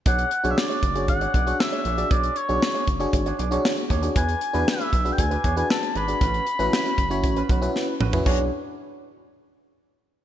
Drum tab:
CC |----------------|----------------|----------------|----------------|
HH |xxxx-xxxxxxx-xxx|xxxx-xxxxxxx-xxx|xxxx-xxxxxxx-xxx|xxxx-xxxxxxx----|
SD |----o-------o---|----o-------o---|----o-------o---|----o-------o---|
T2 |----------------|----------------|----------------|--------------o-|
FT |----------------|----------------|----------------|---------------o|
BD |o-----o-o-o-----|o-----o-o-----o-|o-----o-o-o-----|o-----o-o-o-----|

CC |x---------------|
HH |----------------|
SD |----------------|
T2 |----------------|
FT |----------------|
BD |o---------------|